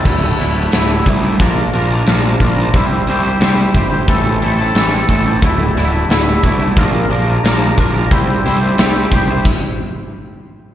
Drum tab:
CC |x-------|--------|--------|----x---|
HH |-xxxxxxx|xxxxxxxx|xxxxxxxx|xxxx----|
SD |-oo---o-|--o---o-|-oo---o-|-oo-----|
BD |o--oo--o|o--oo--o|o--oo--o|o--oo---|